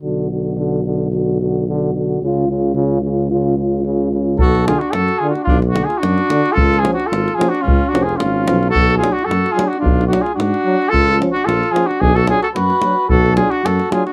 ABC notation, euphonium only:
X:1
M:2/4
L:1/8
Q:1/4=110
K:none
V:1 name="Euphonium"
^F F F F | ^F F F F | ^E E E E | ^E E E E |
z D z D | z D z D | z ^C z C | z ^C z C |
z D z D | z D z D | z ^C z C | z D z D |
z D z D |]